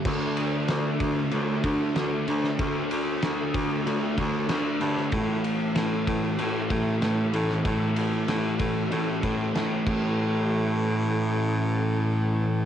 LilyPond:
<<
  \new Staff \with { instrumentName = "Distorted electric guitar" } { \time 4/4 \key d \major \tempo 4 = 95 <d a d'>2 <d a d'>8 <a d'>8 <d a d'>8 <a d'>8 | <d a d'>2 <d a d'>8 <a d'>8 <d a d'>8 <a d'>8 | <a, e a>2 <a, e a>8 <e a>8 <a, e a>8 <e a>8 | <a, e a>2 <a, e a>8 <e a>8 <a, e a>8 <a, e a>8~ |
<a, e a>1 | }
  \new Staff \with { instrumentName = "Baritone saxophone" } { \clef bass \time 4/4 \key d \major d,4 d,8 d,8 d,8 d,8 d,8 d,8 | d,8 d,8 d,8 d,8 d,8 d,8 d,8 g,8 | a,8 r8 a,8 a,8 a,8 a,8 a,8 a,8 | a,8 a,8 a,8 a,8 a,8 a,8 a,8 a,8~ |
a,1 | }
  \new DrumStaff \with { instrumentName = "Drums" } \drummode { \time 4/4 <cymc bd>8 cymr8 <cymr sn>8 <bd cymr>8 cymr8 <bd cymr>8 <cymr sn>8 cymr16 sn16 | <bd cymr>8 cymr8 <cymr sn>8 <bd cymr>8 cymr8 <bd cymr>8 <cymr sn>8 cymr16 sn16 | <bd cymr>8 cymr8 <cymr sn>8 <bd cymr>8 cymr8 <bd cymr>8 <cymr sn>8 cymr16 sn16 | <bd cymr>8 cymr8 <cymr sn>8 <bd cymr>8 cymr8 <bd cymr>8 <cymr sn>8 <cymc bd>8 |
r4 r4 r4 r4 | }
>>